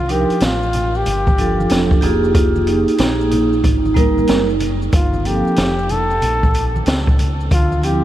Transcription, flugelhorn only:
0.00 0.12 F4 loud
0.11 0.44 G4 loud
0.43 0.98 F4 loud
0.96 2.04 G4 loud
4.95 5.28 F4 medium
5.26 5.92 G4 loud
5.91 6.87 A4 loud
7.53 7.86 F4 medium
7.85 8.04 G4 medium

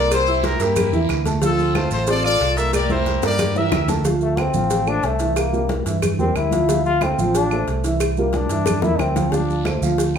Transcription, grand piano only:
0.00 0.22 A#3 medium
0.00 0.22 A#4 medium
0.00 0.22 A#5 medium
0.27 0.54 E4 medium
0.27 0.55 E5 medium
0.27 0.55 E6 medium
0.60 0.87 A#3 medium
0.60 0.87 A#4 medium
0.60 0.87 A#5 medium
0.92 1.20 E3 medium
0.92 1.20 E4 medium
0.92 1.20 E5 loud
1.25 1.39 A3 medium
1.25 1.39 A4 medium
1.25 1.40 A5 medium
1.42 1.69 F3 medium
1.42 1.69 F4 medium
1.42 1.69 F5 medium
1.75 2.02 A3 medium
1.75 2.02 A4 medium
1.75 2.02 A5 medium
2.07 2.21 C4 medium
2.07 2.21 C5 medium
2.07 2.21 C6 medium
2.23 2.51 F4 medium
2.23 2.51 F5 medium
2.23 2.51 F6 medium
2.56 2.84 A#3 medium
2.56 2.84 A#4 medium
2.56 2.84 A#5 medium
2.90 3.17 E4 medium
2.90 3.17 E5 medium
2.90 3.17 E6 medium
3.22 3.50 A#3 medium
3.22 3.50 A#4 medium
3.22 3.50 A#5 medium
3.55 3.83 E3 medium
3.55 3.83 E4 medium
3.55 3.83 E5 medium
3.88 4.02 A3 medium
3.88 4.02 A4 medium
3.88 4.02 A5 medium
4.05 4.32 F3 medium
4.05 4.32 F4 medium
4.05 4.32 F5 medium
4.37 4.51 A3 medium
4.37 4.51 A4 medium
4.37 4.52 C5 medium
4.54 4.81 F3 medium
4.54 4.82 F4 medium
4.54 4.82 F5 medium
4.87 5.14 A3 medium
4.87 5.14 A4 medium
4.87 5.14 C5 medium
5.20 5.47 E3 medium
5.20 5.47 E4 medium
5.20 5.48 E5 medium
5.53 5.80 G3 medium
5.53 5.80 G4 medium
5.53 5.80 A#4 medium
5.86 6.13 E3 loud
5.86 6.13 E4 loud
5.86 6.13 E5 medium
6.19 6.46 G3 medium
6.19 6.46 G4 medium
6.19 6.47 A#4 medium
6.52 6.66 F3 medium
6.52 6.66 F4 medium
6.52 6.66 F5 medium
6.69 6.96 F3 medium
6.69 6.96 F4 medium
6.69 6.96 F5 medium
7.02 7.16 A3 medium
7.02 7.16 A4 medium
7.02 7.16 C5 medium
7.18 7.45 F3 loud
7.18 7.46 F4 loud
7.18 7.46 F5 medium
7.52 7.79 A3 medium
7.52 7.79 A4 medium
7.52 7.79 C5 medium
7.84 8.11 E3 loud
7.84 8.12 E4 medium
7.84 8.12 E5 medium
8.18 8.45 G3 medium
8.18 8.45 G4 medium
8.18 8.45 A#4 medium
8.50 8.77 E3 medium
8.50 8.78 E4 loud
8.50 8.78 E5 loud
8.83 9.10 G3 medium
8.83 9.10 G4 medium
8.83 9.11 A#4 medium
9.16 9.30 F3 medium
9.16 9.30 F4 medium
9.16 9.30 F5 medium
9.33 9.60 F3 medium
9.33 9.60 F4 medium
9.33 9.60 F5 medium
9.66 9.79 A3 medium
9.66 9.79 A4 medium
9.66 9.79 C5 medium
9.83 10.09 F3 medium
9.83 10.10 F4 medium
9.83 10.10 F5 medium

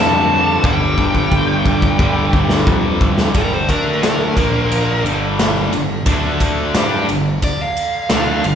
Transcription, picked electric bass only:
0.00 0.57 F2 medium
0.64 0.94 G1 medium
0.98 1.28 G1 medium
1.32 1.62 G1 loud
1.65 1.96 G1 medium
1.99 2.30 G1 medium
2.33 2.64 G1 medium
2.66 3.28 F2 medium
3.35 3.66 G1 medium
3.69 4.33 D2 medium
4.36 5.01 A#1 medium
5.04 5.68 G1 medium
5.73 6.04 G1 medium
6.06 6.70 D2 medium
6.75 7.06 G2 loud
7.09 7.40 G1 medium
8.11 8.42 D2 medium
8.44 8.55 G1 medium

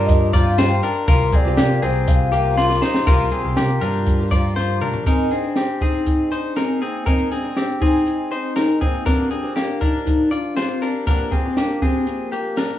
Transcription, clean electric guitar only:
0.00 0.31 D4 medium
0.00 0.30 A#4 medium
0.33 0.58 F4 medium
0.33 0.58 D5 medium
0.58 0.84 F4 medium
0.58 0.83 C5 medium
0.83 1.08 D4 medium
0.83 1.07 A#4 medium
1.08 1.33 F4 medium
1.08 1.33 A#4 loud
1.33 1.58 C4 soft
1.33 1.57 G#4 medium
1.57 1.83 A#3 medium
1.57 1.82 G4 medium
1.82 2.30 C4 medium
1.82 2.29 G#4 medium
2.32 2.57 A#3 medium
2.32 2.57 G4 medium
2.58 2.83 A#3 medium
2.58 2.82 F4 medium
2.82 3.07 D#4 medium
2.82 3.07 C5 medium
3.07 3.31 F4 medium
3.07 3.32 A#4 loud
3.32 3.57 C4 soft
3.32 3.56 G#4 medium
3.57 3.82 A#3 medium
3.57 3.82 G4 medium
3.81 4.29 D4 medium
3.81 4.28 A#4 medium
4.31 4.56 F4 soft
4.31 4.56 D5 medium
4.56 4.82 F4 medium
4.56 4.81 C5 medium
4.81 5.07 D4 medium
4.81 5.06 A#4 medium
5.07 5.32 D#4 medium
5.07 5.32 A#4 medium
5.31 5.56 C4 soft
5.31 5.56 G#4 medium
5.57 5.81 C4 medium
5.57 5.82 G4 medium
5.82 6.29 C4 soft
5.82 6.29 G#4 medium
6.32 6.56 D#4 soft
6.32 6.56 C5 medium
6.57 6.82 D#4 medium
6.57 6.81 A#4 medium
6.82 7.07 C4 medium
6.82 7.06 G#4 medium
7.06 7.32 D#4 medium
7.06 7.31 A#4 medium
7.32 7.56 C4 soft
7.32 7.57 G#4 medium
7.57 7.81 C4 medium
7.57 7.82 G4 medium
7.82 8.29 C4 medium
7.82 8.29 G#4 medium
8.32 8.56 D#4 soft
8.32 8.56 C5 medium
8.56 8.82 D#4 medium
8.56 8.81 A#4 medium
8.81 9.06 C4 medium
8.81 9.06 G#4 medium
9.06 9.31 D4 medium
9.06 9.30 A#4 medium
9.31 9.56 C4 soft
9.31 9.55 G#4 medium
9.56 9.82 A#3 medium
9.56 9.81 G4 medium
9.81 10.29 D4 medium
9.81 10.29 A#4 medium
10.31 10.56 F4 soft
10.31 10.56 D5 medium
10.57 10.82 F4 medium
10.57 10.82 C5 medium
10.82 11.07 D4 medium
10.82 11.06 A#4 medium
11.07 11.32 D4 medium
11.07 11.32 A#4 medium
11.31 11.57 C4 soft
11.31 11.57 G#4 medium
11.57 11.83 A#3 medium
11.57 11.82 G4 medium
11.82 12.30 C4 soft
11.82 12.29 G#4 medium
12.32 12.58 A#3 soft
12.32 12.57 G4 medium
12.57 12.79 D4 medium
12.57 12.79 A#4 medium

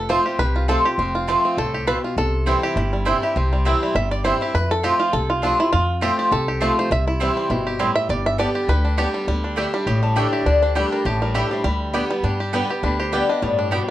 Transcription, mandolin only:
0.09 0.19 C4 medium
0.09 0.20 F4 medium
0.09 0.20 C5 medium
0.09 0.20 A5 medium
0.68 0.79 C4 medium
0.68 0.79 F4 medium
0.68 0.79 C5 medium
0.68 0.79 A5 loud
1.27 1.38 C4 medium
1.27 1.38 F4 medium
1.27 1.38 C5 medium
1.27 1.38 A5 loud
1.87 1.97 C4 medium
1.87 1.98 F4 loud
1.87 1.98 C5 loud
1.87 1.98 A5 medium
2.46 2.57 C4 medium
2.46 2.57 E4 medium
2.46 2.57 C5 medium
2.46 2.57 G5 loud
3.05 3.16 C4 medium
3.05 3.16 E4 medium
3.05 3.16 C5 medium
3.05 3.16 G5 loud
3.65 3.75 C4 medium
3.65 3.75 E4 medium
3.65 3.76 C5 medium
3.65 3.76 G5 medium
4.24 4.34 C4 medium
4.24 4.35 E4 medium
4.24 4.35 C5 medium
4.24 4.35 G5 medium
4.83 4.93 C4 medium
4.83 4.94 F4 medium
4.83 4.94 C5 medium
4.83 4.94 A5 medium
5.42 5.52 C4 medium
5.42 5.53 F4 loud
5.42 5.53 C5 medium
5.42 5.53 A5 loud
6.01 6.12 C4 medium
6.01 6.12 F4 medium
6.01 6.12 C5 medium
6.01 6.12 A5 loud
6.60 6.71 C4 loud
6.60 6.71 F4 medium
6.60 6.71 C5 medium
6.60 6.71 A5 loud
7.20 7.30 C4 medium
7.20 7.30 E4 medium
7.20 7.30 C5 loud
7.20 7.31 G5 medium
7.79 7.89 C4 medium
7.79 7.90 E4 medium
7.79 7.90 C5 loud
7.79 7.90 G5 loud
8.38 8.48 B3 medium
8.38 8.49 G4 loud
8.38 8.49 D5 medium
8.38 8.49 A5 medium
8.97 9.08 B3 medium
8.97 9.08 G4 loud
8.97 9.08 D5 loud
8.97 9.08 A5 loud
9.56 9.67 A3 medium
9.56 9.67 G4 medium
9.56 9.67 D5 medium
9.56 9.67 G5 medium
10.16 10.26 A3 medium
10.16 10.26 G4 medium
10.16 10.26 D5 loud
10.16 10.27 G5 loud
10.75 10.85 A3 medium
10.75 10.86 G4 medium
10.75 10.86 D5 medium
10.75 10.86 G5 loud
11.35 11.45 A3 medium
11.35 11.45 G4 medium
11.35 11.45 D5 medium
11.35 11.45 G5 medium
11.94 12.04 B3 medium
11.94 12.04 G4 medium
11.94 12.04 D5 medium
11.94 12.04 G5 medium
12.53 12.63 B3 medium
12.53 12.63 G4 medium
12.53 12.63 D5 medium
12.53 12.64 G5 loud
13.12 13.22 B3 medium
13.12 13.23 G4 medium
13.12 13.23 D5 loud
13.12 13.23 G5 medium
13.71 13.81 B3 medium
13.71 13.82 G4 medium
13.71 13.82 D5 medium
13.71 13.82 G5 loud

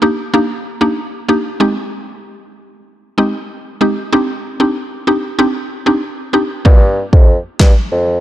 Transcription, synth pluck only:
0.02 0.20 A#3 medium
0.02 0.20 D4 medium
0.02 0.20 D#4 medium
0.02 0.20 G4 medium
0.34 0.52 A#3 medium
0.34 0.52 D4 medium
0.34 0.52 D#4 medium
0.34 0.52 G4 loud
0.81 0.99 A#3 medium
0.81 0.99 D4 medium
0.81 0.99 D#4 medium
0.81 0.99 G4 medium
1.28 1.47 A#3 medium
1.28 1.47 D4 medium
1.28 1.47 D#4 medium
1.28 1.47 G4 medium
1.60 2.18 G#3 medium
1.60 2.18 C4 medium
1.60 2.18 D#4 medium
1.60 2.19 G4 medium
3.18 3.36 G#3 medium
3.18 3.36 C4 medium
3.18 3.36 D#4 medium
3.18 3.36 G4 medium
3.81 3.99 G#3 medium
3.81 3.99 C4 medium
3.81 3.99 D#4 medium
3.81 3.99 G4 medium
4.13 4.31 C4 medium
4.13 4.31 D4 medium
4.13 4.31 D#4 medium
4.13 4.31 G4 loud
4.60 4.78 C4 medium
4.60 4.78 D4 medium
4.60 4.78 D#4 medium
4.60 4.78 G4 medium
5.07 5.25 C4 medium
5.07 5.26 D4 medium
5.07 5.26 D#4 medium
5.07 5.26 G4 medium
5.39 5.57 C4 medium
5.39 5.57 D4 medium
5.39 5.57 D#4 medium
5.39 5.57 G4 loud
5.86 6.04 C4 medium
5.86 6.05 D4 medium
5.86 6.05 D#4 medium
5.86 6.05 G4 medium
6.33 6.52 C4 medium
6.33 6.52 D4 medium
6.33 6.52 D#4 medium
6.33 6.52 G4 medium
6.65 7.23 A#3 medium
6.65 7.23 D4 medium
6.65 7.23 F4 medium
6.65 7.24 G4 loud

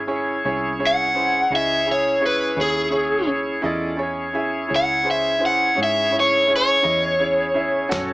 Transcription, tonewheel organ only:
0.00 3.62 E4 medium
0.00 3.62 G#4 medium
0.00 3.62 C#5 medium
3.66 4.01 F4 medium
3.66 4.01 A4 medium
3.66 4.01 D5 medium
4.02 7.90 E4 medium
4.02 7.89 G#4 medium
4.02 7.90 C#5 medium
7.94 8.13 C#4 medium
7.94 8.13 F#4 medium
7.94 8.13 A4 medium
7.94 8.13 C#5 medium

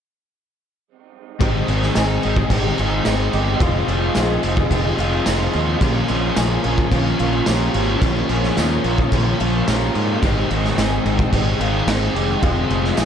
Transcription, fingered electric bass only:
1.41 1.61 G#1 medium
1.68 1.89 G#1 medium
1.97 2.17 G#1 medium
2.25 2.45 G#1 medium
2.50 2.70 G#1 medium
2.79 2.99 G#1 medium
3.06 3.26 G#1 medium
3.34 3.54 G1 medium
3.60 3.81 F1 loud
3.88 4.09 F1 medium
4.17 4.37 A#1 loud
4.44 4.64 F1 medium
4.71 4.91 F1 medium
4.99 5.19 F1 medium
5.27 5.47 F1 medium
5.55 5.75 D#2 medium
5.81 6.01 A#1 medium
6.10 6.30 A#1 medium
6.37 6.57 A#1 loud
6.65 6.85 A#1 loud
6.91 7.12 A#1 medium
7.20 7.40 A#1 loud
7.47 7.67 A#1 medium
7.75 7.95 G#1 medium
8.02 8.22 A#1 medium
8.29 8.50 A#1 medium
8.58 8.78 D#2 loud
8.84 9.05 A#1 medium
9.12 9.32 A#1 medium
9.40 9.60 A#1 medium
9.68 9.88 A#1 medium
9.95 10.15 G#2 medium
10.23 10.43 G#1 medium
10.51 10.71 G#1 medium
10.78 10.98 G#1 medium
11.05 11.25 G#1 loud
11.33 11.53 G#1 medium
11.59 11.80 G#1 loud
11.87 12.07 G#1 medium
12.14 12.35 F1 medium
12.43 12.63 F1 medium
12.71 12.91 F1 medium
12.98 13.05 A#1 medium

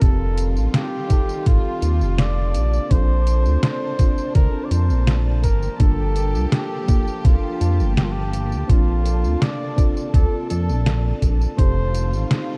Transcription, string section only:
0.02 2.52 D#3 medium
0.02 2.52 G3 medium
0.02 2.53 F4 medium
0.02 12.57 A5 medium
2.54 5.41 C3 medium
2.54 11.54 A#3 medium
2.54 5.41 D4 medium
5.44 8.66 F3 medium
5.44 8.66 G4 medium
8.69 11.55 C3 medium
8.69 11.55 D4 medium
11.58 12.57 D#3 medium
11.58 12.57 G3 medium
11.58 12.57 F4 medium

